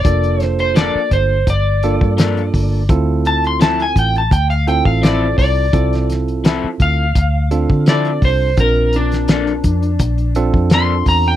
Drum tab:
HH |xxxxx-x-x-x-xxo-|x-xxxxxxxxx-x-o-|xxxxx-x-x-x-xxo-|x-xxxxxxxxx-x-o-|
SD |--o-o-------o---|----o-------o---|-oo-o-------o---|---oo-------o---|
BD |o-----o-o--o--o-|o-----o-o--o--o-|o-----o-o--o--o-|o-----o-o--o--o-|